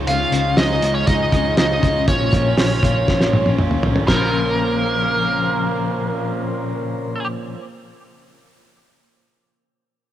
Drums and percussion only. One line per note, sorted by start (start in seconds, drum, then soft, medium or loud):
0.07 hi-hat pedal medium
0.07 open hi-hat loud
0.32 hi-hat pedal medium
0.32 open hi-hat medium
0.57 snare loud
0.57 hi-hat pedal medium
0.57 open hi-hat loud
0.82 hi-hat pedal medium
0.82 open hi-hat medium
1.07 kick loud
1.07 hi-hat pedal medium
1.07 open hi-hat medium
1.32 kick medium
1.32 hi-hat pedal medium
1.32 open hi-hat medium
1.57 snare loud
1.57 hi-hat pedal medium
1.57 open hi-hat loud
1.83 kick medium
1.83 hi-hat pedal medium
1.83 open hi-hat medium
2.08 kick loud
2.08 hi-hat pedal medium
2.08 open hi-hat loud
2.33 kick medium
2.33 hi-hat pedal medium
2.33 open hi-hat medium
2.58 snare loud
2.58 hi-hat pedal medium
2.58 open hi-hat loud
2.83 kick loud
2.83 snare soft
2.83 hi-hat pedal medium
2.83 open hi-hat medium
3.08 kick loud
3.08 snare medium
3.21 snare medium
3.33 high tom medium
3.46 high tom medium
3.58 mid tom medium
3.71 mid tom medium
3.83 floor tom loud
3.96 floor tom loud
4.08 kick loud
4.08 snare loud
4.08 china medium